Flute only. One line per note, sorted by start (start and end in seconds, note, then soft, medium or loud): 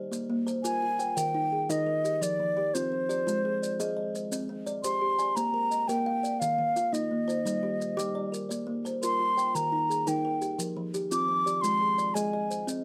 0.64 1.18 G#5 loud
1.16 1.71 G5 loud
1.70 2.24 D#5 loud
2.22 2.76 D5 loud
2.74 4.14 C5 medium
4.83 5.37 C6 loud
5.36 5.89 A#5 loud
5.88 6.41 G5 loud
6.40 6.94 F5 medium
6.93 8.33 D#5 medium
9.03 9.57 C6 loud
9.55 10.10 A#5 loud
10.08 10.60 G5 medium
11.12 11.63 D6 loud
11.61 12.16 C6 loud
12.14 12.67 G#5 medium